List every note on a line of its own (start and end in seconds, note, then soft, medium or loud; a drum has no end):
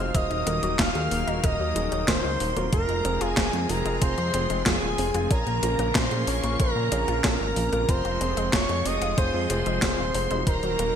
0.00 0.12 F1 medium
0.00 0.11 F3 medium
0.00 0.12 G#3 medium
0.00 0.12 C4 medium
0.00 0.43 D#4 loud
0.00 0.43 F#4 loud
0.00 0.43 C5 loud
0.00 0.16 F5 loud
0.00 0.11 F6 loud
0.14 0.28 D#1 loud
0.14 2.70 D#3 medium
0.14 2.70 F#3 medium
0.14 0.21 A#3 medium
0.14 2.70 A#3 medium
0.14 0.81 D#5 loud
0.14 0.75 D#6 loud
0.14 kick loud
0.14 closed hi-hat medium
0.30 0.44 D#1 medium
0.30 0.37 D#4 medium
0.30 closed hi-hat soft
0.46 0.60 D#1 medium
0.46 0.58 A#3 medium
0.46 0.76 D#4 medium
0.46 0.76 F#4 medium
0.46 0.76 A#4 medium
0.46 closed hi-hat medium
0.63 0.77 D#1 medium
0.63 0.74 F#3 loud
0.63 closed hi-hat medium
0.79 0.93 D#1 loud
0.79 0.90 D#3 medium
0.79 1.45 F5 loud
0.79 1.40 F6 loud
0.79 kick loud
0.79 snare loud
0.79 clap medium
0.79 closed hi-hat medium
0.95 1.09 D#2 medium
0.95 1.02 F#3 medium
0.95 1.40 D#4 medium
0.95 1.40 F#4 medium
0.95 1.40 G#4 loud
0.95 closed hi-hat soft
1.11 1.25 D#1 medium
1.11 1.27 A#3 medium
1.11 open hi-hat medium
1.27 1.41 D#1 medium
1.27 1.38 D#4 loud
1.27 closed hi-hat medium
1.44 1.57 D#1 loud
1.44 1.59 A#3 loud
1.44 1.72 D#4 medium
1.44 1.72 F#4 medium
1.44 1.72 A#4 loud
1.44 2.08 D#5 loud
1.44 2.04 D#6 loud
1.44 kick loud
1.44 closed hi-hat medium
1.60 1.73 D#2 medium
1.60 1.71 F#3 medium
1.76 1.89 D#1 medium
1.76 1.82 D#3 medium
1.76 2.04 D#4 medium
1.76 2.04 F#4 medium
1.76 2.04 G#4 medium
1.76 closed hi-hat medium
1.92 2.06 D#1 medium
1.92 2.03 F#3 loud
1.92 closed hi-hat medium
2.08 2.22 D#1 loud
2.08 2.15 A#3 medium
2.08 2.53 D#4 medium
2.08 2.53 F#4 medium
2.08 2.53 A#4 medium
2.08 2.69 C5 loud
2.08 2.69 C6 loud
2.08 kick loud
2.08 snare loud
2.08 clap medium
2.08 closed hi-hat medium
2.24 2.38 C#2 medium
2.24 2.31 D#4 medium
2.40 2.54 D#1 medium
2.40 2.51 A#3 medium
2.40 open hi-hat medium
2.57 2.70 D#1 medium
2.57 2.67 F#3 loud
2.57 3.01 C4 loud
2.57 3.01 F4 medium
2.57 3.01 A#4 loud
2.57 closed hi-hat medium
2.73 2.86 F1 loud
2.73 5.28 C3 medium
2.73 7.85 F3 medium
2.73 2.83 F3 medium
2.73 5.28 G#3 medium
2.73 3.22 A#4 loud
2.73 3.18 A#5 loud
2.73 kick loud
2.73 closed hi-hat medium
2.89 3.02 F1 medium
2.89 2.95 G#3 medium
2.89 closed hi-hat soft
3.05 3.19 F1 medium
3.05 3.20 C4 medium
3.05 3.34 C4 medium
3.05 3.34 F4 medium
3.05 3.34 G#4 medium
3.05 closed hi-hat medium
3.21 3.35 F1 medium
3.21 3.32 F4 loud
3.21 3.71 G#4 loud
3.21 3.66 G#5 loud
3.21 closed hi-hat medium
3.37 3.51 F1 loud
3.37 3.52 C4 loud
3.37 kick loud
3.37 snare loud
3.37 clap medium
3.37 closed hi-hat medium
3.53 3.67 F2 medium
3.53 3.64 G#3 medium
3.53 3.98 C4 medium
3.53 3.98 F4 medium
3.53 3.98 G#4 loud
3.53 closed hi-hat soft
3.69 3.83 F1 medium
3.69 3.76 F3 medium
3.69 4.01 A#4 loud
3.69 3.99 A#5 loud
3.69 open hi-hat medium
3.86 3.99 F1 medium
3.86 3.96 G#3 loud
3.86 closed hi-hat medium
4.02 4.15 F1 loud
4.02 4.30 C4 medium
4.02 4.08 C4 medium
4.02 4.30 F4 medium
4.02 4.30 G#4 loud
4.02 4.62 C5 loud
4.02 4.62 C6 loud
4.02 kick loud
4.02 closed hi-hat medium
4.18 4.31 F2 medium
4.18 4.24 F4 medium
4.18 closed hi-hat soft
4.34 4.48 F1 loud
4.34 4.45 C4 medium
4.34 closed hi-hat medium
4.50 4.64 F1 medium
4.50 4.61 G#3 loud
4.50 closed hi-hat medium
4.66 4.80 F1 loud
4.66 4.77 F3 medium
4.66 4.95 C4 medium
4.66 4.95 F4 medium
4.66 5.32 G#4 loud
4.66 4.95 G#4 loud
4.66 5.27 G#5 loud
4.66 kick loud
4.66 snare loud
4.66 clap medium
4.66 closed hi-hat medium
4.82 4.96 D#1 medium
4.82 4.89 G#3 medium
4.98 5.12 F1 medium
4.98 5.11 C4 medium
4.98 5.14 C4 medium
4.98 5.11 F4 medium
4.98 5.11 G#4 medium
4.98 open hi-hat medium
5.14 5.28 F1 medium
5.14 5.29 C4 medium
5.14 5.29 F4 medium
5.14 5.25 F4 loud
5.14 5.29 G#4 loud
5.14 closed hi-hat medium
5.30 5.44 A#1 loud
5.30 7.86 C#3 medium
5.30 7.86 A#3 medium
5.30 5.46 C#4 loud
5.30 5.97 A#4 loud
5.30 5.91 A#5 loud
5.30 kick loud
5.30 closed hi-hat medium
5.47 5.60 A#1 medium
5.47 5.58 A#3 medium
5.47 closed hi-hat soft
5.63 5.76 A#1 loud
5.63 5.70 F3 medium
5.63 5.92 C#4 medium
5.63 5.92 F4 medium
5.63 5.92 A#4 medium
5.63 closed hi-hat medium
5.79 5.93 A#1 medium
5.79 5.90 A#3 loud
5.79 closed hi-hat medium
5.95 6.09 A#1 loud
5.95 6.02 C#4 medium
5.95 6.29 C5 loud
5.95 6.25 C6 loud
5.95 kick loud
5.95 snare loud
5.95 clap medium
5.95 closed hi-hat medium
6.11 6.25 A#2 medium
6.11 6.56 C#4 medium
6.11 6.56 F4 medium
6.11 6.18 F4 medium
6.11 6.56 G#4 loud
6.11 closed hi-hat soft
6.27 6.41 A#1 loud
6.27 6.38 C#4 medium
6.27 6.59 C#5 loud
6.27 6.57 C#6 loud
6.27 open hi-hat medium
6.43 6.57 A#1 medium
6.43 6.54 A#3 loud
6.43 closed hi-hat medium
6.60 6.73 A#1 loud
6.60 6.71 F3 medium
6.60 6.88 C#4 medium
6.60 6.88 F4 medium
6.60 6.90 A#4 loud
6.60 6.88 A#4 loud
6.60 6.90 A#5 loud
6.60 kick loud
6.60 closed hi-hat medium
6.76 6.89 A#2 medium
6.76 6.82 A#3 medium
6.92 7.06 A#1 medium
6.92 7.20 C#4 medium
6.92 7.07 C#4 medium
6.92 7.20 F4 medium
6.92 7.20 G#4 loud
6.92 7.22 A#4 loud
6.92 7.22 A#5 loud
6.92 closed hi-hat medium
7.08 7.22 A#1 medium
7.08 7.19 F4 loud
7.08 closed hi-hat medium
7.24 7.38 A#1 loud
7.24 7.69 C#4 medium
7.24 7.40 C#4 loud
7.24 7.69 F4 medium
7.24 7.69 A#4 medium
7.24 7.90 A#4 loud
7.24 7.85 A#5 loud
7.24 kick loud
7.24 snare loud
7.24 clap medium
7.24 closed hi-hat medium
7.40 7.54 G#1 medium
7.40 7.51 A#3 medium
7.56 7.70 A#1 medium
7.56 7.63 F3 medium
7.56 open hi-hat medium
7.72 7.86 A#1 medium
7.72 7.83 A#3 loud
7.72 8.17 C4 loud
7.72 8.17 F4 loud
7.72 8.17 A#4 loud
7.72 closed hi-hat medium
7.89 8.02 F1 loud
7.89 10.44 C3 medium
7.89 10.44 F3 medium
7.89 10.44 G#3 medium
7.89 7.95 C4 medium
7.89 8.55 C5 loud
7.89 8.49 C6 loud
7.89 kick loud
7.89 closed hi-hat medium
8.05 8.18 F1 medium
8.05 8.11 F4 medium
8.05 closed hi-hat soft
8.21 8.35 F1 medium
8.21 8.50 C4 medium
8.21 8.32 C4 medium
8.21 8.50 F4 medium
8.21 8.50 G#4 medium
8.21 closed hi-hat medium
8.37 8.51 F1 medium
8.37 8.48 G#3 loud
8.37 closed hi-hat soft
8.53 8.67 F1 loud
8.53 8.64 F3 medium
8.53 8.87 C#5 loud
8.53 8.83 C#6 loud
8.53 kick loud
8.53 snare loud
8.53 clap medium
8.53 closed hi-hat medium
8.69 8.83 F2 medium
8.69 8.76 G#3 medium
8.69 9.14 C4 medium
8.69 9.14 F4 medium
8.69 9.14 G#4 loud
8.69 closed hi-hat soft
8.85 8.99 F1 medium
8.85 9.01 C4 medium
8.85 9.17 D#5 loud
8.85 9.16 D#6 loud
8.85 open hi-hat medium
9.01 9.15 F1 medium
9.01 9.13 F4 loud
9.01 closed hi-hat medium
9.18 9.31 F1 loud
9.18 9.46 C4 loud
9.18 9.33 C4 loud
9.18 9.46 F4 medium
9.18 9.46 G#4 loud
9.18 9.48 C5 loud
9.18 9.48 C6 loud
9.18 kick loud
9.18 closed hi-hat medium
9.34 9.48 F2 medium
9.34 9.45 G#3 medium
9.50 9.64 F1 medium
9.50 9.57 F3 medium
9.50 9.78 C4 medium
9.50 9.78 F4 medium
9.50 9.78 G#4 medium
9.50 9.80 C5 loud
9.50 9.80 C6 loud
9.50 closed hi-hat medium
9.66 9.80 F1 medium
9.66 9.77 G#3 loud
9.66 closed hi-hat medium
9.82 9.96 F1 loud
9.82 10.27 C4 medium
9.82 9.89 C4 medium
9.82 10.27 F4 medium
9.82 10.27 G#4 medium
9.82 10.49 C5 loud
9.82 10.43 C6 loud
9.82 kick loud
9.82 snare loud
9.82 clap medium
9.82 closed hi-hat medium
9.98 10.12 D#1 medium
9.98 10.05 F4 medium
10.14 10.28 F1 medium
10.14 10.25 C4 medium
10.14 open hi-hat medium
10.31 10.44 F1 medium
10.31 10.42 G#3 loud
10.31 10.75 D#4 loud
10.31 10.75 F#4 medium
10.31 10.75 C5 loud
10.31 closed hi-hat medium
10.47 10.60 D#1 loud
10.47 10.96 D#3 medium
10.47 10.58 D#3 medium
10.47 10.96 F#3 medium
10.47 10.96 A#3 medium
10.47 10.96 A#4 loud
10.47 10.96 A#5 loud
10.47 kick loud
10.47 closed hi-hat medium
10.63 10.77 D#1 medium
10.63 10.70 F#3 medium
10.63 closed hi-hat soft
10.79 10.93 D#1 medium
10.79 10.95 A#3 medium
10.79 10.96 D#4 medium
10.79 10.96 F#4 medium
10.79 10.96 A#4 medium
10.79 closed hi-hat medium